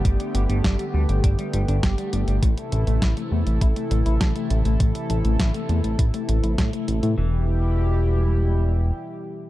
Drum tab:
HH |xxxxxx-xxxxxxxxx|xxxxxx-xxxxxxxxx|xxxxxxxxxxxxxxxx|----------------|
SD |----o-------o---|----o-------o---|----o-------o---|----------------|
BD |o---o---o---o---|o---o---o---o---|o---o---o---o---|----------------|